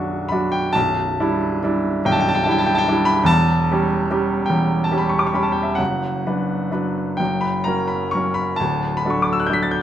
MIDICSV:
0, 0, Header, 1, 2, 480
1, 0, Start_track
1, 0, Key_signature, 2, "minor"
1, 0, Tempo, 879765
1, 883, Tempo, 817439
1, 1856, Time_signature, 12, 3, 24, 8
1, 2803, Tempo, 918836
1, 5380, End_track
2, 0, Start_track
2, 0, Title_t, "Grand piano"
2, 0, Program_c, 0, 0
2, 0, Control_c, 0, 64, 127
2, 0, Note_on_c, 0, 23, 48
2, 0, Note_on_c, 0, 35, 47
2, 0, Note_on_c, 0, 54, 45
2, 0, Note_on_c, 0, 62, 47
2, 0, Note_on_c, 0, 66, 45
2, 0, Note_on_c, 0, 85, 86
2, 142, Note_off_c, 0, 54, 0
2, 144, Note_off_c, 0, 62, 0
2, 146, Note_off_c, 0, 66, 0
2, 155, Note_off_c, 0, 85, 0
2, 156, Note_on_c, 0, 83, 61
2, 174, Note_on_c, 0, 54, 44
2, 174, Note_on_c, 0, 66, 47
2, 175, Note_on_c, 0, 62, 45
2, 282, Note_on_c, 0, 79, 71
2, 284, Note_off_c, 0, 83, 0
2, 392, Note_off_c, 0, 54, 0
2, 393, Note_off_c, 0, 62, 0
2, 393, Note_off_c, 0, 66, 0
2, 396, Note_on_c, 0, 81, 85
2, 407, Note_off_c, 0, 79, 0
2, 412, Note_off_c, 0, 35, 0
2, 412, Note_on_c, 0, 35, 58
2, 416, Note_off_c, 0, 23, 0
2, 416, Note_on_c, 0, 23, 54
2, 420, Control_c, 0, 64, 0
2, 501, Control_c, 0, 64, 127
2, 643, Note_off_c, 0, 35, 0
2, 645, Note_off_c, 0, 23, 0
2, 656, Note_on_c, 0, 55, 48
2, 656, Note_on_c, 0, 62, 43
2, 656, Note_on_c, 0, 64, 54
2, 864, Note_off_c, 0, 64, 0
2, 865, Note_off_c, 0, 55, 0
2, 865, Note_off_c, 0, 62, 0
2, 892, Note_on_c, 0, 55, 46
2, 896, Note_on_c, 0, 64, 53
2, 897, Note_on_c, 0, 62, 46
2, 1109, Note_off_c, 0, 55, 0
2, 1112, Note_off_c, 0, 62, 0
2, 1112, Note_off_c, 0, 64, 0
2, 1121, Note_off_c, 0, 81, 0
2, 1137, Note_on_c, 0, 23, 66
2, 1138, Note_on_c, 0, 35, 63
2, 1142, Note_on_c, 0, 79, 81
2, 1177, Note_on_c, 0, 81, 78
2, 1180, Note_off_c, 0, 79, 0
2, 1220, Note_off_c, 0, 81, 0
2, 1226, Note_on_c, 0, 79, 84
2, 1267, Note_off_c, 0, 79, 0
2, 1274, Note_on_c, 0, 81, 77
2, 1311, Note_on_c, 0, 79, 77
2, 1313, Note_off_c, 0, 81, 0
2, 1353, Note_off_c, 0, 79, 0
2, 1364, Note_on_c, 0, 81, 71
2, 1366, Note_off_c, 0, 23, 0
2, 1367, Note_off_c, 0, 35, 0
2, 1380, Note_on_c, 0, 62, 48
2, 1383, Note_on_c, 0, 55, 47
2, 1386, Note_on_c, 0, 64, 59
2, 1402, Note_off_c, 0, 81, 0
2, 1405, Note_on_c, 0, 79, 77
2, 1445, Note_off_c, 0, 79, 0
2, 1451, Note_on_c, 0, 81, 75
2, 1490, Note_off_c, 0, 81, 0
2, 1494, Note_on_c, 0, 79, 74
2, 1535, Note_off_c, 0, 79, 0
2, 1546, Note_on_c, 0, 81, 77
2, 1566, Note_on_c, 0, 79, 93
2, 1583, Note_off_c, 0, 81, 0
2, 1594, Note_off_c, 0, 62, 0
2, 1595, Note_off_c, 0, 55, 0
2, 1597, Note_off_c, 0, 64, 0
2, 1623, Note_on_c, 0, 55, 55
2, 1626, Note_on_c, 0, 62, 53
2, 1629, Note_on_c, 0, 64, 56
2, 1726, Note_on_c, 0, 83, 87
2, 1730, Note_off_c, 0, 79, 0
2, 1832, Note_on_c, 0, 40, 69
2, 1836, Note_on_c, 0, 28, 65
2, 1839, Note_off_c, 0, 55, 0
2, 1840, Note_off_c, 0, 62, 0
2, 1842, Note_off_c, 0, 64, 0
2, 1848, Note_on_c, 0, 81, 105
2, 1852, Note_off_c, 0, 83, 0
2, 1865, Control_c, 0, 64, 0
2, 1962, Control_c, 0, 64, 127
2, 2076, Note_off_c, 0, 40, 0
2, 2078, Note_off_c, 0, 28, 0
2, 2114, Note_on_c, 0, 55, 49
2, 2116, Note_on_c, 0, 61, 48
2, 2118, Note_on_c, 0, 67, 55
2, 2315, Note_off_c, 0, 55, 0
2, 2316, Note_off_c, 0, 61, 0
2, 2318, Note_off_c, 0, 67, 0
2, 2345, Note_on_c, 0, 55, 51
2, 2347, Note_on_c, 0, 61, 46
2, 2350, Note_on_c, 0, 67, 56
2, 2546, Note_off_c, 0, 55, 0
2, 2547, Note_off_c, 0, 61, 0
2, 2549, Note_off_c, 0, 67, 0
2, 2550, Note_on_c, 0, 79, 66
2, 2557, Note_off_c, 0, 81, 0
2, 2571, Note_on_c, 0, 28, 58
2, 2571, Note_on_c, 0, 40, 53
2, 2773, Note_off_c, 0, 79, 0
2, 2775, Note_on_c, 0, 81, 64
2, 2802, Note_off_c, 0, 28, 0
2, 2802, Note_off_c, 0, 40, 0
2, 2819, Note_on_c, 0, 55, 41
2, 2820, Note_on_c, 0, 61, 42
2, 2821, Note_on_c, 0, 67, 50
2, 2850, Note_on_c, 0, 83, 58
2, 2858, Note_off_c, 0, 81, 0
2, 2911, Note_on_c, 0, 85, 56
2, 2916, Note_off_c, 0, 83, 0
2, 2961, Note_on_c, 0, 86, 56
2, 2967, Note_off_c, 0, 85, 0
2, 3001, Note_on_c, 0, 85, 56
2, 3011, Note_off_c, 0, 86, 0
2, 3022, Note_off_c, 0, 55, 0
2, 3023, Note_off_c, 0, 61, 0
2, 3023, Note_off_c, 0, 67, 0
2, 3038, Note_on_c, 0, 55, 41
2, 3039, Note_on_c, 0, 61, 43
2, 3039, Note_on_c, 0, 67, 45
2, 3045, Note_on_c, 0, 83, 54
2, 3051, Note_off_c, 0, 85, 0
2, 3085, Note_on_c, 0, 81, 56
2, 3098, Note_off_c, 0, 83, 0
2, 3134, Note_on_c, 0, 79, 54
2, 3147, Note_off_c, 0, 81, 0
2, 3190, Note_on_c, 0, 76, 52
2, 3203, Note_off_c, 0, 79, 0
2, 3254, Note_on_c, 0, 78, 68
2, 3256, Note_off_c, 0, 55, 0
2, 3257, Note_off_c, 0, 61, 0
2, 3257, Note_off_c, 0, 67, 0
2, 3264, Note_off_c, 0, 76, 0
2, 3270, Note_on_c, 0, 30, 46
2, 3272, Note_on_c, 0, 42, 54
2, 3286, Control_c, 0, 64, 0
2, 3387, Control_c, 0, 64, 127
2, 3507, Note_off_c, 0, 30, 0
2, 3508, Note_off_c, 0, 42, 0
2, 3523, Note_on_c, 0, 54, 37
2, 3524, Note_on_c, 0, 71, 41
2, 3525, Note_on_c, 0, 62, 37
2, 3743, Note_off_c, 0, 54, 0
2, 3744, Note_off_c, 0, 62, 0
2, 3744, Note_off_c, 0, 71, 0
2, 3758, Note_on_c, 0, 54, 34
2, 3758, Note_on_c, 0, 62, 35
2, 3761, Note_on_c, 0, 71, 37
2, 3985, Note_off_c, 0, 54, 0
2, 3986, Note_off_c, 0, 62, 0
2, 3987, Note_off_c, 0, 71, 0
2, 3994, Note_on_c, 0, 79, 68
2, 3997, Note_off_c, 0, 78, 0
2, 4010, Note_on_c, 0, 30, 46
2, 4010, Note_on_c, 0, 42, 53
2, 4017, Control_c, 0, 64, 0
2, 4119, Note_on_c, 0, 83, 59
2, 4123, Note_off_c, 0, 79, 0
2, 4126, Control_c, 0, 64, 127
2, 4240, Note_on_c, 0, 82, 65
2, 4245, Note_off_c, 0, 30, 0
2, 4245, Note_off_c, 0, 42, 0
2, 4246, Note_off_c, 0, 83, 0
2, 4253, Note_on_c, 0, 54, 35
2, 4257, Note_on_c, 0, 61, 36
2, 4259, Note_on_c, 0, 70, 40
2, 4364, Note_on_c, 0, 83, 55
2, 4366, Note_off_c, 0, 82, 0
2, 4473, Note_off_c, 0, 54, 0
2, 4475, Note_off_c, 0, 61, 0
2, 4476, Note_off_c, 0, 70, 0
2, 4487, Note_on_c, 0, 85, 65
2, 4489, Note_off_c, 0, 83, 0
2, 4506, Note_on_c, 0, 54, 38
2, 4506, Note_on_c, 0, 70, 37
2, 4509, Note_on_c, 0, 61, 33
2, 4607, Note_on_c, 0, 83, 67
2, 4611, Note_off_c, 0, 85, 0
2, 4719, Note_off_c, 0, 54, 0
2, 4720, Note_off_c, 0, 70, 0
2, 4721, Note_off_c, 0, 61, 0
2, 4723, Note_on_c, 0, 81, 77
2, 4731, Note_off_c, 0, 83, 0
2, 4742, Note_on_c, 0, 26, 50
2, 4743, Note_on_c, 0, 38, 56
2, 4744, Control_c, 0, 64, 0
2, 4845, Control_c, 0, 64, 127
2, 4935, Note_on_c, 0, 83, 65
2, 4944, Note_off_c, 0, 81, 0
2, 4970, Note_off_c, 0, 26, 0
2, 4971, Note_off_c, 0, 38, 0
2, 4979, Note_on_c, 0, 54, 42
2, 4980, Note_on_c, 0, 62, 40
2, 4985, Note_on_c, 0, 69, 44
2, 5004, Note_on_c, 0, 85, 54
2, 5018, Note_off_c, 0, 83, 0
2, 5067, Note_on_c, 0, 86, 55
2, 5074, Note_off_c, 0, 85, 0
2, 5121, Note_on_c, 0, 88, 59
2, 5125, Note_off_c, 0, 86, 0
2, 5158, Note_on_c, 0, 90, 52
2, 5169, Note_off_c, 0, 88, 0
2, 5192, Note_off_c, 0, 54, 0
2, 5192, Note_off_c, 0, 62, 0
2, 5194, Note_on_c, 0, 91, 56
2, 5195, Note_off_c, 0, 69, 0
2, 5204, Note_off_c, 0, 90, 0
2, 5209, Note_on_c, 0, 54, 38
2, 5211, Note_on_c, 0, 69, 40
2, 5212, Note_on_c, 0, 62, 42
2, 5230, Note_on_c, 0, 95, 56
2, 5241, Note_off_c, 0, 91, 0
2, 5278, Note_on_c, 0, 93, 54
2, 5281, Note_off_c, 0, 95, 0
2, 5324, Note_on_c, 0, 91, 56
2, 5331, Note_off_c, 0, 93, 0
2, 5380, Note_off_c, 0, 54, 0
2, 5380, Note_off_c, 0, 62, 0
2, 5380, Note_off_c, 0, 69, 0
2, 5380, Note_off_c, 0, 91, 0
2, 5380, End_track
0, 0, End_of_file